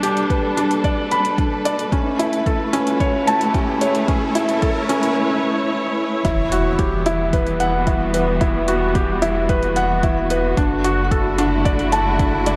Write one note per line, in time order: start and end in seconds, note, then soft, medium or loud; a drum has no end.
0.00 1.90 G1 medium
0.00 1.92 G3 medium
0.00 0.57 D4 medium
0.00 1.92 D4 medium
0.00 0.19 G4 medium
0.00 3.66 A4 medium
0.00 0.30 B4 medium
0.00 7.23 B4 medium
0.00 0.84 D5 medium
0.00 1.11 B5 medium
0.00 closed hi-hat medium
0.00 riser medium
0.17 closed hi-hat soft
0.30 0.56 B4 medium
0.30 kick medium
0.30 closed hi-hat soft
0.57 0.83 D4 medium
0.57 closed hi-hat medium
0.71 closed hi-hat soft
0.84 1.10 D5 medium
0.84 kick medium
0.84 closed hi-hat soft
1.11 1.37 B5 medium
1.11 closed hi-hat medium
1.25 closed hi-hat soft
1.38 1.64 D4 medium
1.38 kick loud
1.38 closed hi-hat soft
1.65 1.91 D5 medium
1.65 closed hi-hat medium
1.79 closed hi-hat soft
1.92 6.25 A3 medium
1.92 2.18 C#4 medium
1.92 kick loud
1.92 closed hi-hat soft
2.19 2.35 E4 medium
2.19 closed hi-hat medium
2.33 closed hi-hat soft
2.46 2.72 A4 medium
2.46 kick medium
2.46 closed hi-hat soft
2.59 7.80 E4 medium
2.73 2.99 C#4 loud
2.73 closed hi-hat medium
2.87 closed hi-hat soft
3.00 3.26 C#5 medium
3.00 kick medium
3.00 closed hi-hat soft
3.27 3.53 A5 loud
3.27 closed hi-hat medium
3.41 closed hi-hat soft
3.54 3.80 C#4 medium
3.54 kick loud
3.54 closed hi-hat soft
3.81 4.07 C#5 medium
3.81 closed hi-hat medium
3.87 7.42 C#5 medium
3.95 closed hi-hat soft
4.08 4.34 C#4 medium
4.08 kick medium
4.08 closed hi-hat soft
4.35 4.51 E4 medium
4.35 closed hi-hat medium
4.49 closed hi-hat soft
4.62 4.88 A4 medium
4.62 kick medium
4.62 closed hi-hat soft
4.89 5.15 C#4 loud
4.89 closed hi-hat medium
5.03 closed hi-hat soft
6.25 10.55 E1 medium
6.25 10.57 E3 medium
6.25 6.50 E4 medium
6.25 kick medium
6.25 closed hi-hat soft
6.25 impact medium
6.52 6.67 F#4 medium
6.52 closed hi-hat medium
6.61 11.71 B3 medium
6.79 7.05 G4 medium
6.79 kick loud
6.79 closed hi-hat soft
6.88 10.57 G3 medium
7.06 7.32 E4 loud
7.06 closed hi-hat medium
7.33 7.59 B4 medium
7.33 kick loud
7.33 closed hi-hat soft
7.47 closed hi-hat soft
7.60 7.86 F#5 loud
7.60 closed hi-hat medium
7.78 12.56 F#4 medium
7.87 8.13 E4 medium
7.87 kick loud
7.87 closed hi-hat soft
8.14 8.40 B4 medium
8.14 closed hi-hat medium
8.41 8.67 E4 medium
8.41 kick loud
8.41 closed hi-hat soft
8.68 8.83 F#4 medium
8.68 closed hi-hat medium
8.95 9.21 G4 medium
8.95 kick loud
8.95 closed hi-hat soft
9.22 9.48 E4 loud
9.22 closed hi-hat medium
9.49 9.75 B4 loud
9.49 kick loud
9.49 closed hi-hat soft
9.63 closed hi-hat soft
9.76 10.02 F#5 loud
9.76 closed hi-hat medium
10.03 10.29 E4 medium
10.03 kick loud
10.03 closed hi-hat soft
10.30 10.56 B4 medium
10.30 closed hi-hat medium
10.57 12.56 F#1 medium
10.57 12.56 D3 medium
10.57 10.83 D4 medium
10.57 kick loud
10.57 closed hi-hat soft
10.84 11.00 F#4 medium
10.84 closed hi-hat medium
11.06 12.56 A3 medium
11.11 12.56 E4 medium
11.11 11.37 A4 medium
11.11 kick loud
11.11 closed hi-hat soft
11.38 11.64 D4 loud
11.38 closed hi-hat medium
11.65 11.91 D5 medium
11.65 kick loud
11.65 closed hi-hat soft
11.79 closed hi-hat soft
11.92 12.18 A5 loud
11.92 closed hi-hat medium
12.19 12.45 D4 medium
12.19 kick loud
12.19 closed hi-hat soft
12.46 12.56 D5 medium
12.46 closed hi-hat medium